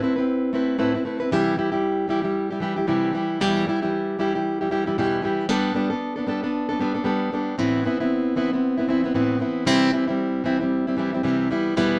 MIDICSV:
0, 0, Header, 1, 2, 480
1, 0, Start_track
1, 0, Key_signature, 0, "major"
1, 0, Tempo, 522193
1, 1203, Time_signature, 4, 2, 24, 8
1, 11022, End_track
2, 0, Start_track
2, 0, Title_t, "Steel-string acoustic guitar"
2, 0, Program_c, 0, 25
2, 16, Note_on_c, 0, 57, 57
2, 23, Note_on_c, 0, 60, 66
2, 34, Note_on_c, 0, 71, 72
2, 35, Note_on_c, 0, 64, 63
2, 136, Note_off_c, 0, 71, 0
2, 147, Note_on_c, 0, 71, 58
2, 153, Note_off_c, 0, 57, 0
2, 153, Note_off_c, 0, 64, 0
2, 157, Note_off_c, 0, 60, 0
2, 164, Note_on_c, 0, 64, 51
2, 170, Note_on_c, 0, 60, 48
2, 483, Note_off_c, 0, 60, 0
2, 483, Note_off_c, 0, 71, 0
2, 485, Note_on_c, 0, 57, 67
2, 489, Note_off_c, 0, 64, 0
2, 494, Note_on_c, 0, 60, 66
2, 500, Note_on_c, 0, 64, 69
2, 508, Note_on_c, 0, 71, 78
2, 711, Note_off_c, 0, 57, 0
2, 714, Note_off_c, 0, 60, 0
2, 717, Note_on_c, 0, 45, 74
2, 720, Note_off_c, 0, 64, 0
2, 720, Note_off_c, 0, 71, 0
2, 722, Note_on_c, 0, 57, 73
2, 725, Note_on_c, 0, 60, 78
2, 731, Note_on_c, 0, 64, 79
2, 731, Note_on_c, 0, 71, 91
2, 856, Note_off_c, 0, 71, 0
2, 864, Note_off_c, 0, 45, 0
2, 866, Note_off_c, 0, 57, 0
2, 867, Note_off_c, 0, 64, 0
2, 867, Note_on_c, 0, 71, 54
2, 868, Note_off_c, 0, 60, 0
2, 878, Note_on_c, 0, 64, 50
2, 891, Note_on_c, 0, 60, 43
2, 961, Note_off_c, 0, 60, 0
2, 963, Note_off_c, 0, 71, 0
2, 965, Note_on_c, 0, 57, 56
2, 966, Note_off_c, 0, 64, 0
2, 972, Note_on_c, 0, 60, 55
2, 977, Note_on_c, 0, 64, 58
2, 984, Note_on_c, 0, 71, 66
2, 1091, Note_off_c, 0, 71, 0
2, 1102, Note_on_c, 0, 71, 60
2, 1104, Note_off_c, 0, 64, 0
2, 1108, Note_off_c, 0, 57, 0
2, 1111, Note_off_c, 0, 60, 0
2, 1115, Note_on_c, 0, 64, 54
2, 1127, Note_on_c, 0, 60, 44
2, 1200, Note_off_c, 0, 71, 0
2, 1207, Note_off_c, 0, 64, 0
2, 1207, Note_on_c, 0, 48, 95
2, 1213, Note_off_c, 0, 60, 0
2, 1214, Note_on_c, 0, 52, 102
2, 1222, Note_on_c, 0, 55, 100
2, 1223, Note_on_c, 0, 64, 95
2, 1226, Note_on_c, 0, 67, 103
2, 1428, Note_off_c, 0, 52, 0
2, 1437, Note_off_c, 0, 55, 0
2, 1439, Note_on_c, 0, 52, 68
2, 1445, Note_off_c, 0, 48, 0
2, 1447, Note_off_c, 0, 64, 0
2, 1448, Note_on_c, 0, 55, 65
2, 1449, Note_off_c, 0, 67, 0
2, 1458, Note_on_c, 0, 64, 69
2, 1460, Note_on_c, 0, 67, 74
2, 1568, Note_off_c, 0, 67, 0
2, 1575, Note_off_c, 0, 64, 0
2, 1579, Note_on_c, 0, 67, 67
2, 1585, Note_off_c, 0, 52, 0
2, 1586, Note_on_c, 0, 64, 64
2, 1587, Note_off_c, 0, 55, 0
2, 1598, Note_on_c, 0, 55, 49
2, 1909, Note_off_c, 0, 55, 0
2, 1910, Note_on_c, 0, 52, 72
2, 1918, Note_off_c, 0, 64, 0
2, 1919, Note_off_c, 0, 67, 0
2, 1920, Note_on_c, 0, 55, 63
2, 1929, Note_on_c, 0, 64, 77
2, 1934, Note_on_c, 0, 67, 72
2, 2032, Note_off_c, 0, 67, 0
2, 2043, Note_on_c, 0, 67, 63
2, 2048, Note_off_c, 0, 64, 0
2, 2053, Note_off_c, 0, 55, 0
2, 2059, Note_on_c, 0, 64, 59
2, 2060, Note_off_c, 0, 52, 0
2, 2064, Note_on_c, 0, 55, 55
2, 2291, Note_off_c, 0, 67, 0
2, 2303, Note_off_c, 0, 64, 0
2, 2303, Note_on_c, 0, 67, 57
2, 2306, Note_off_c, 0, 55, 0
2, 2316, Note_on_c, 0, 64, 53
2, 2320, Note_on_c, 0, 55, 51
2, 2391, Note_on_c, 0, 52, 74
2, 2393, Note_off_c, 0, 55, 0
2, 2398, Note_off_c, 0, 64, 0
2, 2401, Note_off_c, 0, 67, 0
2, 2404, Note_on_c, 0, 55, 80
2, 2409, Note_on_c, 0, 64, 72
2, 2415, Note_on_c, 0, 67, 76
2, 2527, Note_off_c, 0, 67, 0
2, 2538, Note_on_c, 0, 67, 58
2, 2540, Note_off_c, 0, 64, 0
2, 2541, Note_off_c, 0, 52, 0
2, 2548, Note_off_c, 0, 55, 0
2, 2551, Note_on_c, 0, 64, 57
2, 2562, Note_on_c, 0, 55, 52
2, 2633, Note_off_c, 0, 55, 0
2, 2638, Note_on_c, 0, 48, 80
2, 2639, Note_off_c, 0, 67, 0
2, 2641, Note_off_c, 0, 64, 0
2, 2643, Note_on_c, 0, 52, 84
2, 2644, Note_on_c, 0, 55, 82
2, 2652, Note_on_c, 0, 64, 78
2, 2654, Note_on_c, 0, 67, 80
2, 2865, Note_off_c, 0, 52, 0
2, 2876, Note_on_c, 0, 52, 68
2, 2879, Note_off_c, 0, 55, 0
2, 2881, Note_off_c, 0, 48, 0
2, 2882, Note_off_c, 0, 64, 0
2, 2888, Note_off_c, 0, 67, 0
2, 2890, Note_on_c, 0, 55, 61
2, 2893, Note_on_c, 0, 64, 66
2, 2905, Note_on_c, 0, 67, 67
2, 3119, Note_off_c, 0, 52, 0
2, 3126, Note_off_c, 0, 55, 0
2, 3126, Note_on_c, 0, 40, 96
2, 3127, Note_off_c, 0, 67, 0
2, 3128, Note_off_c, 0, 64, 0
2, 3131, Note_on_c, 0, 52, 97
2, 3132, Note_on_c, 0, 47, 92
2, 3136, Note_on_c, 0, 55, 115
2, 3138, Note_on_c, 0, 67, 115
2, 3144, Note_on_c, 0, 64, 109
2, 3360, Note_off_c, 0, 52, 0
2, 3364, Note_off_c, 0, 40, 0
2, 3367, Note_off_c, 0, 47, 0
2, 3369, Note_off_c, 0, 55, 0
2, 3370, Note_off_c, 0, 67, 0
2, 3371, Note_on_c, 0, 52, 74
2, 3373, Note_off_c, 0, 64, 0
2, 3380, Note_on_c, 0, 55, 74
2, 3390, Note_on_c, 0, 64, 86
2, 3395, Note_on_c, 0, 67, 81
2, 3503, Note_off_c, 0, 67, 0
2, 3507, Note_off_c, 0, 64, 0
2, 3511, Note_off_c, 0, 52, 0
2, 3514, Note_on_c, 0, 67, 61
2, 3515, Note_off_c, 0, 55, 0
2, 3518, Note_on_c, 0, 64, 61
2, 3530, Note_on_c, 0, 55, 55
2, 3532, Note_on_c, 0, 52, 49
2, 3836, Note_off_c, 0, 52, 0
2, 3842, Note_off_c, 0, 55, 0
2, 3846, Note_off_c, 0, 67, 0
2, 3847, Note_on_c, 0, 52, 67
2, 3848, Note_off_c, 0, 64, 0
2, 3853, Note_on_c, 0, 55, 69
2, 3858, Note_on_c, 0, 64, 76
2, 3870, Note_on_c, 0, 67, 75
2, 3988, Note_off_c, 0, 67, 0
2, 3989, Note_off_c, 0, 52, 0
2, 3992, Note_off_c, 0, 55, 0
2, 3994, Note_off_c, 0, 64, 0
2, 3999, Note_on_c, 0, 67, 57
2, 4006, Note_on_c, 0, 64, 54
2, 4012, Note_on_c, 0, 52, 49
2, 4015, Note_on_c, 0, 55, 51
2, 4226, Note_off_c, 0, 67, 0
2, 4231, Note_off_c, 0, 64, 0
2, 4237, Note_on_c, 0, 67, 67
2, 4239, Note_off_c, 0, 52, 0
2, 4240, Note_off_c, 0, 55, 0
2, 4242, Note_on_c, 0, 64, 55
2, 4250, Note_on_c, 0, 55, 51
2, 4253, Note_on_c, 0, 52, 46
2, 4308, Note_off_c, 0, 52, 0
2, 4317, Note_off_c, 0, 55, 0
2, 4319, Note_on_c, 0, 52, 68
2, 4321, Note_off_c, 0, 64, 0
2, 4327, Note_off_c, 0, 67, 0
2, 4328, Note_on_c, 0, 55, 70
2, 4332, Note_on_c, 0, 64, 70
2, 4340, Note_on_c, 0, 67, 78
2, 4457, Note_off_c, 0, 67, 0
2, 4464, Note_off_c, 0, 52, 0
2, 4468, Note_off_c, 0, 64, 0
2, 4468, Note_on_c, 0, 67, 58
2, 4469, Note_off_c, 0, 55, 0
2, 4479, Note_on_c, 0, 64, 59
2, 4480, Note_on_c, 0, 55, 54
2, 4488, Note_on_c, 0, 52, 47
2, 4563, Note_off_c, 0, 67, 0
2, 4567, Note_off_c, 0, 52, 0
2, 4568, Note_off_c, 0, 64, 0
2, 4569, Note_off_c, 0, 55, 0
2, 4577, Note_on_c, 0, 40, 82
2, 4578, Note_on_c, 0, 47, 96
2, 4578, Note_on_c, 0, 52, 78
2, 4586, Note_on_c, 0, 64, 96
2, 4588, Note_on_c, 0, 55, 79
2, 4590, Note_on_c, 0, 67, 74
2, 4788, Note_off_c, 0, 52, 0
2, 4799, Note_on_c, 0, 52, 68
2, 4803, Note_off_c, 0, 55, 0
2, 4809, Note_off_c, 0, 40, 0
2, 4810, Note_off_c, 0, 47, 0
2, 4814, Note_off_c, 0, 64, 0
2, 4814, Note_on_c, 0, 55, 71
2, 4816, Note_off_c, 0, 67, 0
2, 4824, Note_on_c, 0, 64, 67
2, 4826, Note_on_c, 0, 67, 70
2, 5034, Note_off_c, 0, 55, 0
2, 5041, Note_off_c, 0, 52, 0
2, 5045, Note_on_c, 0, 55, 105
2, 5046, Note_on_c, 0, 59, 105
2, 5047, Note_off_c, 0, 64, 0
2, 5050, Note_on_c, 0, 62, 112
2, 5054, Note_off_c, 0, 67, 0
2, 5058, Note_on_c, 0, 69, 109
2, 5270, Note_off_c, 0, 55, 0
2, 5279, Note_off_c, 0, 59, 0
2, 5281, Note_on_c, 0, 55, 80
2, 5282, Note_off_c, 0, 62, 0
2, 5290, Note_off_c, 0, 69, 0
2, 5290, Note_on_c, 0, 59, 73
2, 5293, Note_on_c, 0, 62, 91
2, 5301, Note_on_c, 0, 69, 77
2, 5411, Note_off_c, 0, 69, 0
2, 5420, Note_off_c, 0, 62, 0
2, 5422, Note_on_c, 0, 69, 66
2, 5425, Note_off_c, 0, 55, 0
2, 5430, Note_off_c, 0, 59, 0
2, 5431, Note_on_c, 0, 62, 53
2, 5448, Note_on_c, 0, 59, 49
2, 5649, Note_off_c, 0, 69, 0
2, 5661, Note_on_c, 0, 69, 50
2, 5663, Note_off_c, 0, 62, 0
2, 5674, Note_on_c, 0, 62, 47
2, 5675, Note_off_c, 0, 59, 0
2, 5686, Note_on_c, 0, 59, 43
2, 5754, Note_off_c, 0, 59, 0
2, 5759, Note_off_c, 0, 69, 0
2, 5759, Note_on_c, 0, 55, 78
2, 5763, Note_off_c, 0, 62, 0
2, 5765, Note_on_c, 0, 59, 74
2, 5775, Note_on_c, 0, 62, 77
2, 5784, Note_on_c, 0, 69, 72
2, 5897, Note_off_c, 0, 69, 0
2, 5904, Note_off_c, 0, 55, 0
2, 5906, Note_off_c, 0, 62, 0
2, 5907, Note_off_c, 0, 59, 0
2, 5908, Note_on_c, 0, 69, 53
2, 5917, Note_on_c, 0, 62, 58
2, 5930, Note_on_c, 0, 59, 55
2, 6137, Note_off_c, 0, 69, 0
2, 6148, Note_on_c, 0, 69, 66
2, 6149, Note_off_c, 0, 62, 0
2, 6157, Note_off_c, 0, 59, 0
2, 6160, Note_on_c, 0, 62, 55
2, 6176, Note_on_c, 0, 59, 52
2, 6242, Note_off_c, 0, 69, 0
2, 6244, Note_off_c, 0, 59, 0
2, 6245, Note_on_c, 0, 55, 76
2, 6248, Note_off_c, 0, 62, 0
2, 6255, Note_on_c, 0, 59, 79
2, 6263, Note_on_c, 0, 62, 88
2, 6265, Note_on_c, 0, 69, 82
2, 6372, Note_off_c, 0, 69, 0
2, 6380, Note_off_c, 0, 62, 0
2, 6383, Note_on_c, 0, 69, 54
2, 6387, Note_off_c, 0, 55, 0
2, 6388, Note_off_c, 0, 59, 0
2, 6391, Note_on_c, 0, 62, 65
2, 6399, Note_on_c, 0, 59, 46
2, 6468, Note_off_c, 0, 59, 0
2, 6472, Note_on_c, 0, 55, 78
2, 6476, Note_off_c, 0, 62, 0
2, 6479, Note_on_c, 0, 59, 83
2, 6480, Note_off_c, 0, 69, 0
2, 6487, Note_on_c, 0, 62, 86
2, 6493, Note_on_c, 0, 69, 75
2, 6716, Note_off_c, 0, 55, 0
2, 6720, Note_off_c, 0, 59, 0
2, 6724, Note_off_c, 0, 62, 0
2, 6727, Note_off_c, 0, 69, 0
2, 6730, Note_on_c, 0, 55, 66
2, 6739, Note_on_c, 0, 59, 67
2, 6742, Note_on_c, 0, 62, 67
2, 6754, Note_on_c, 0, 69, 72
2, 6964, Note_off_c, 0, 59, 0
2, 6965, Note_on_c, 0, 45, 93
2, 6966, Note_off_c, 0, 55, 0
2, 6971, Note_off_c, 0, 62, 0
2, 6971, Note_on_c, 0, 60, 99
2, 6972, Note_on_c, 0, 52, 95
2, 6975, Note_on_c, 0, 59, 97
2, 6976, Note_off_c, 0, 69, 0
2, 6980, Note_on_c, 0, 64, 110
2, 7196, Note_off_c, 0, 52, 0
2, 7203, Note_off_c, 0, 45, 0
2, 7206, Note_off_c, 0, 60, 0
2, 7207, Note_on_c, 0, 52, 68
2, 7208, Note_off_c, 0, 59, 0
2, 7210, Note_off_c, 0, 64, 0
2, 7218, Note_on_c, 0, 60, 81
2, 7227, Note_on_c, 0, 59, 77
2, 7235, Note_on_c, 0, 64, 80
2, 7346, Note_off_c, 0, 64, 0
2, 7348, Note_off_c, 0, 52, 0
2, 7353, Note_off_c, 0, 59, 0
2, 7353, Note_off_c, 0, 60, 0
2, 7357, Note_on_c, 0, 64, 65
2, 7364, Note_on_c, 0, 59, 61
2, 7370, Note_on_c, 0, 60, 49
2, 7676, Note_off_c, 0, 60, 0
2, 7681, Note_on_c, 0, 52, 73
2, 7683, Note_off_c, 0, 59, 0
2, 7686, Note_off_c, 0, 64, 0
2, 7687, Note_on_c, 0, 60, 70
2, 7694, Note_on_c, 0, 59, 77
2, 7700, Note_on_c, 0, 64, 72
2, 7825, Note_off_c, 0, 52, 0
2, 7828, Note_off_c, 0, 60, 0
2, 7828, Note_off_c, 0, 64, 0
2, 7831, Note_off_c, 0, 59, 0
2, 7839, Note_on_c, 0, 64, 57
2, 7845, Note_on_c, 0, 59, 49
2, 7859, Note_on_c, 0, 60, 51
2, 8055, Note_off_c, 0, 64, 0
2, 8066, Note_on_c, 0, 64, 57
2, 8070, Note_off_c, 0, 59, 0
2, 8079, Note_off_c, 0, 60, 0
2, 8081, Note_on_c, 0, 59, 53
2, 8091, Note_on_c, 0, 60, 48
2, 8157, Note_off_c, 0, 60, 0
2, 8159, Note_on_c, 0, 52, 70
2, 8161, Note_off_c, 0, 59, 0
2, 8161, Note_off_c, 0, 64, 0
2, 8168, Note_on_c, 0, 60, 72
2, 8172, Note_on_c, 0, 59, 83
2, 8181, Note_on_c, 0, 64, 82
2, 8297, Note_off_c, 0, 64, 0
2, 8303, Note_off_c, 0, 52, 0
2, 8308, Note_off_c, 0, 60, 0
2, 8308, Note_on_c, 0, 64, 56
2, 8310, Note_off_c, 0, 59, 0
2, 8322, Note_on_c, 0, 59, 56
2, 8332, Note_on_c, 0, 60, 51
2, 8400, Note_off_c, 0, 60, 0
2, 8402, Note_off_c, 0, 64, 0
2, 8404, Note_off_c, 0, 59, 0
2, 8405, Note_on_c, 0, 45, 74
2, 8406, Note_on_c, 0, 52, 65
2, 8412, Note_on_c, 0, 60, 82
2, 8415, Note_on_c, 0, 59, 86
2, 8417, Note_on_c, 0, 64, 76
2, 8623, Note_off_c, 0, 52, 0
2, 8628, Note_off_c, 0, 60, 0
2, 8634, Note_on_c, 0, 52, 69
2, 8639, Note_on_c, 0, 60, 65
2, 8642, Note_off_c, 0, 59, 0
2, 8643, Note_off_c, 0, 45, 0
2, 8646, Note_off_c, 0, 64, 0
2, 8653, Note_on_c, 0, 59, 69
2, 8657, Note_on_c, 0, 64, 68
2, 8872, Note_off_c, 0, 52, 0
2, 8873, Note_on_c, 0, 48, 102
2, 8877, Note_off_c, 0, 60, 0
2, 8879, Note_off_c, 0, 64, 0
2, 8883, Note_on_c, 0, 52, 100
2, 8884, Note_on_c, 0, 55, 100
2, 8885, Note_off_c, 0, 59, 0
2, 8888, Note_on_c, 0, 60, 114
2, 8890, Note_on_c, 0, 64, 105
2, 9100, Note_off_c, 0, 52, 0
2, 9111, Note_off_c, 0, 55, 0
2, 9111, Note_on_c, 0, 52, 78
2, 9116, Note_off_c, 0, 48, 0
2, 9122, Note_off_c, 0, 60, 0
2, 9122, Note_on_c, 0, 55, 73
2, 9125, Note_off_c, 0, 64, 0
2, 9133, Note_on_c, 0, 60, 72
2, 9135, Note_on_c, 0, 64, 86
2, 9250, Note_off_c, 0, 64, 0
2, 9259, Note_off_c, 0, 52, 0
2, 9261, Note_on_c, 0, 64, 64
2, 9264, Note_off_c, 0, 60, 0
2, 9265, Note_off_c, 0, 55, 0
2, 9275, Note_on_c, 0, 60, 58
2, 9288, Note_on_c, 0, 55, 55
2, 9593, Note_off_c, 0, 55, 0
2, 9595, Note_on_c, 0, 52, 68
2, 9598, Note_off_c, 0, 64, 0
2, 9599, Note_off_c, 0, 60, 0
2, 9604, Note_on_c, 0, 55, 66
2, 9610, Note_on_c, 0, 60, 83
2, 9614, Note_on_c, 0, 64, 81
2, 9729, Note_off_c, 0, 64, 0
2, 9740, Note_on_c, 0, 64, 58
2, 9741, Note_off_c, 0, 52, 0
2, 9741, Note_off_c, 0, 60, 0
2, 9746, Note_off_c, 0, 55, 0
2, 9752, Note_on_c, 0, 60, 54
2, 9768, Note_on_c, 0, 55, 47
2, 9982, Note_off_c, 0, 64, 0
2, 9988, Note_off_c, 0, 60, 0
2, 9994, Note_on_c, 0, 64, 60
2, 9995, Note_off_c, 0, 55, 0
2, 10005, Note_on_c, 0, 60, 53
2, 10010, Note_on_c, 0, 55, 47
2, 10079, Note_off_c, 0, 55, 0
2, 10081, Note_on_c, 0, 52, 73
2, 10084, Note_off_c, 0, 60, 0
2, 10084, Note_off_c, 0, 64, 0
2, 10090, Note_on_c, 0, 55, 70
2, 10095, Note_on_c, 0, 60, 87
2, 10104, Note_on_c, 0, 64, 76
2, 10219, Note_off_c, 0, 64, 0
2, 10224, Note_off_c, 0, 52, 0
2, 10228, Note_off_c, 0, 55, 0
2, 10230, Note_on_c, 0, 64, 61
2, 10231, Note_off_c, 0, 60, 0
2, 10243, Note_on_c, 0, 60, 49
2, 10253, Note_on_c, 0, 55, 52
2, 10322, Note_off_c, 0, 55, 0
2, 10322, Note_off_c, 0, 64, 0
2, 10323, Note_off_c, 0, 60, 0
2, 10325, Note_on_c, 0, 52, 78
2, 10327, Note_on_c, 0, 48, 87
2, 10333, Note_on_c, 0, 55, 88
2, 10334, Note_on_c, 0, 60, 91
2, 10337, Note_on_c, 0, 64, 78
2, 10558, Note_off_c, 0, 52, 0
2, 10563, Note_off_c, 0, 48, 0
2, 10566, Note_off_c, 0, 55, 0
2, 10566, Note_off_c, 0, 60, 0
2, 10568, Note_off_c, 0, 64, 0
2, 10569, Note_on_c, 0, 52, 59
2, 10577, Note_on_c, 0, 55, 76
2, 10586, Note_on_c, 0, 59, 71
2, 10589, Note_on_c, 0, 64, 82
2, 10804, Note_off_c, 0, 52, 0
2, 10807, Note_off_c, 0, 55, 0
2, 10810, Note_off_c, 0, 59, 0
2, 10810, Note_on_c, 0, 40, 102
2, 10814, Note_off_c, 0, 64, 0
2, 10816, Note_on_c, 0, 52, 98
2, 10818, Note_on_c, 0, 47, 98
2, 10820, Note_on_c, 0, 55, 102
2, 10821, Note_on_c, 0, 59, 99
2, 10824, Note_on_c, 0, 64, 108
2, 11022, Note_off_c, 0, 40, 0
2, 11022, Note_off_c, 0, 47, 0
2, 11022, Note_off_c, 0, 52, 0
2, 11022, Note_off_c, 0, 55, 0
2, 11022, Note_off_c, 0, 59, 0
2, 11022, Note_off_c, 0, 64, 0
2, 11022, End_track
0, 0, End_of_file